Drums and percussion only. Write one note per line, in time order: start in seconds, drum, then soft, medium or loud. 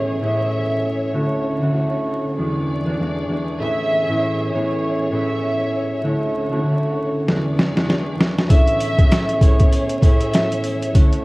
7.29 snare medium
7.59 snare medium
7.77 snare medium
7.90 snare medium
8.20 snare loud
8.38 snare medium
8.50 kick loud
8.50 closed hi-hat loud
8.50 sleigh bells medium
8.67 closed hi-hat medium
8.80 closed hi-hat medium
8.80 sleigh bells medium
8.99 kick medium
8.99 closed hi-hat medium
9.11 snare loud
9.11 closed hi-hat loud
9.11 sleigh bells soft
9.29 closed hi-hat medium
9.41 kick loud
9.41 closed hi-hat medium
9.41 sleigh bells medium
9.60 kick medium
9.60 closed hi-hat medium
9.73 closed hi-hat medium
9.73 sleigh bells medium
9.89 closed hi-hat medium
10.02 kick loud
10.02 closed hi-hat medium
10.02 sleigh bells medium
10.20 closed hi-hat medium
10.33 snare loud
10.33 closed hi-hat loud
10.33 sleigh bells medium
10.52 closed hi-hat medium
10.64 closed hi-hat medium
10.64 sleigh bells medium
10.82 closed hi-hat medium
10.95 kick loud
10.95 closed hi-hat loud
10.95 sleigh bells soft
11.12 closed hi-hat medium